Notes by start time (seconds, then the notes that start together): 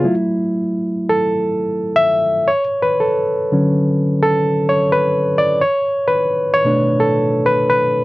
Already playing: F4
0.04 F#3 A3 E4
1.09 A4
1.96 E5
2.48 C#5
2.82 B4
3.00 A4
3.52 D3 F#3 C#4
4.23 A4
4.69 C#5
4.92 B4
5.38 D5
5.62 C#5
6.08 B4
6.54 C#5
6.65 B2 A3 D4
7.00 A4
7.46 B4
7.70 B4